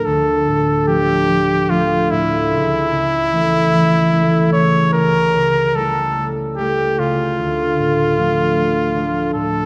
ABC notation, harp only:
X:1
M:3/4
L:1/8
Q:1/4=74
K:Dm
V:1 name="Harp" clef=bass
[D,,F,A,D] A,, [F,A,D] F, [F,A,D] A,, | ^C,, ^C, [E,A,E] E, [E,A,E] C, | ^C,, ^C, [G,A,E] G, [G,A,E] C, | D,, A,, [F,A,D] F, [F,A,D] A,, |]